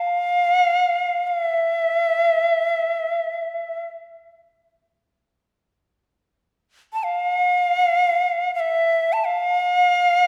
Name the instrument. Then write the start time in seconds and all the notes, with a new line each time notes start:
shakuhachi
Already playing: F5
1.27 F5
1.40 E5
6.93 A5
7.04 F5
8.55 F5
8.60 E5
9.13 A5
9.25 F5